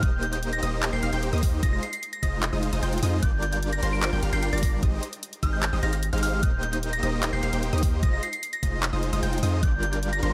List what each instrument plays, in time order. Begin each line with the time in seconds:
0.03 808-style bass D#1, supersaw synth A#3 D#4 G4 C5 D#5, synth pluck D#6, synth bell G6, kick, closed hi-hat
0.23 synth bell G6, closed hi-hat
0.33 synth bell G6, closed hi-hat
0.43 closed hi-hat
0.53 synth bell A#6, closed hi-hat
0.63 808-style bass D#1, supersaw synth A#3 D#4 G4 C5 D#5, synth pluck D#6, closed hi-hat
0.83 clap, closed hi-hat
0.93 808-style bass D#1, supersaw synth A#3 D#4 G4 C5 G5, synth pluck G6, synth bell C7
1.03 808-style bass D#1, supersaw synth A#3 D#4 G4 C5 F5, synth pluck F6, synth bell C7, closed hi-hat
1.13 808-style bass D#1, supersaw synth A#3 D#4 G4 C5 G5, synth pluck G6, closed hi-hat
1.23 closed hi-hat
1.33 808-style bass D#2, supersaw synth A#3 D#4 G4 C5 D#5, synth pluck D#6, closed hi-hat
1.38 closed hi-hat
1.43 kick, open hi-hat
1.63 808-style bass F1, supersaw synth G#3 D#4 F4 C5 D#5, synth pluck D#6, synth bell A#6, kick, closed hi-hat
1.73 synth bell A#6
1.83 synth bell C7, closed hi-hat
1.93 synth bell C7, closed hi-hat
2.03 closed hi-hat
2.13 synth bell A#6, closed hi-hat
2.23 808-style bass F1, supersaw synth G#3 D#4 F4 C5 D#5, synth pluck D#6, synth bell A#6, kick, closed hi-hat
2.43 clap, closed hi-hat
2.53 808-style bass F1, supersaw synth G#3 D#4 F4 C5 D#5, synth pluck D#6
2.63 closed hi-hat
2.73 808-style bass F1, supersaw synth G#3 D#4 F4 C5 D#5, synth pluck D#6, closed hi-hat
2.83 808-style bass F1, supersaw synth G#3 D#4 F4 C5 G5, synth pluck G6, closed hi-hat
2.93 closed hi-hat
2.98 closed hi-hat
3.03 808-style bass F2, supersaw synth G#3 D#4 F4 C5 D#5, synth pluck D#6, open hi-hat
3.23 808-style bass G1, supersaw synth G3 D4 F4 A#4 D5, synth pluck D6, synth bell G6, kick, closed hi-hat
3.43 synth bell G6, closed hi-hat
3.53 synth bell G6, closed hi-hat
3.63 closed hi-hat
3.73 synth bell A#6, closed hi-hat
3.83 808-style bass G1, supersaw synth G3 D4 F4 A#4 C5, synth pluck C6, closed hi-hat
3.93 synth bell D7
4.03 synth bell D7, clap, closed hi-hat
4.13 808-style bass G1, supersaw synth G3 D4 F4 A#4 G5, synth pluck G6
4.23 808-style bass G1, supersaw synth G3 D4 F4 A#4 F5, synth pluck F6, closed hi-hat
4.33 808-style bass G1, supersaw synth G3 D4 F4 A#4 G5, synth pluck G6, synth bell C7, closed hi-hat
4.43 synth bell C7, closed hi-hat
4.53 808-style bass G1, supersaw synth G3 D4 F4 A#4 D5, synth pluck D6, synth bell A#6, closed hi-hat
4.58 closed hi-hat
4.63 kick, open hi-hat
4.83 808-style bass G#1, supersaw synth G#3 D#4 G4 C5 D#5, synth pluck D#6, kick, closed hi-hat
5.03 closed hi-hat
5.13 closed hi-hat
5.23 closed hi-hat
5.33 closed hi-hat
5.43 808-style bass G#1, supersaw synth G#3 D#4 G4 C5 D#5, synth pluck D#6, synth bell F6, kick, closed hi-hat
5.53 synth bell G6
5.63 clap, closed hi-hat
5.73 808-style bass G#1, supersaw synth G#3 D#4 G4 C5 D#5, synth pluck D#6
5.83 808-style bass G#1, supersaw synth G#3 D#4 G4 C5 F5, synth pluck F6, synth bell A#6, closed hi-hat
5.93 synth bell A#6, closed hi-hat
6.03 closed hi-hat
6.13 808-style bass G#1, supersaw synth G#3 D#4 G4 C5 F5, synth pluck F6, closed hi-hat
6.18 closed hi-hat
6.23 synth bell F6, open hi-hat
6.43 808-style bass D#1, supersaw synth A#3 D#4 G4 C5 D#5, synth pluck D#6, synth bell G6, kick, closed hi-hat
6.63 synth bell G6, closed hi-hat
6.73 synth bell G6, closed hi-hat
6.83 closed hi-hat
6.93 synth bell A#6, closed hi-hat
7.03 808-style bass D#1, supersaw synth A#3 D#4 G4 C5 D#5, synth pluck D#6, closed hi-hat
7.23 clap, closed hi-hat
7.33 808-style bass D#1, supersaw synth A#3 D#4 G4 C5 G5, synth pluck G6, synth bell C7
7.43 808-style bass D#1, supersaw synth A#3 D#4 G4 C5 F5, synth pluck F6, synth bell C7, closed hi-hat
7.53 808-style bass D#1, supersaw synth A#3 D#4 G4 C5 G5, synth pluck G6, closed hi-hat
7.63 closed hi-hat
7.73 808-style bass D#2, supersaw synth A#3 D#4 G4 C5 D#5, synth pluck D#6, closed hi-hat
7.78 closed hi-hat
7.83 kick, open hi-hat
8.03 808-style bass F1, supersaw synth G#3 D#4 F4 C5 D#5, synth pluck D#6, synth bell A#6, kick, closed hi-hat
8.13 synth bell A#6
8.23 synth bell C7, closed hi-hat
8.33 synth bell C7, closed hi-hat
8.43 closed hi-hat
8.53 synth bell A#6, closed hi-hat
8.63 808-style bass F1, supersaw synth G#3 D#4 F4 C5 D#5, synth pluck D#6, synth bell A#6, kick, closed hi-hat
8.83 clap, closed hi-hat
8.93 808-style bass F1, supersaw synth G#3 D#4 F4 C5 D#5, synth pluck D#6
9.03 closed hi-hat
9.13 808-style bass F1, supersaw synth G#3 D#4 F4 C5 D#5, synth pluck D#6, closed hi-hat
9.23 808-style bass F1, supersaw synth G#3 D#4 F4 C5 G5, synth pluck G6, closed hi-hat
9.33 closed hi-hat
9.38 closed hi-hat
9.43 808-style bass F2, supersaw synth G#3 D#4 F4 C5 D#5, synth pluck D#6, open hi-hat
9.63 808-style bass G1, supersaw synth G3 D4 F4 A#4 D5, synth pluck D6, synth bell G6, kick, closed hi-hat
9.83 synth bell G6, closed hi-hat
9.93 synth bell G6, closed hi-hat
10.03 closed hi-hat
10.13 synth bell A#6, closed hi-hat
10.23 808-style bass G1, supersaw synth G3 D4 F4 A#4 C5, synth pluck C6, closed hi-hat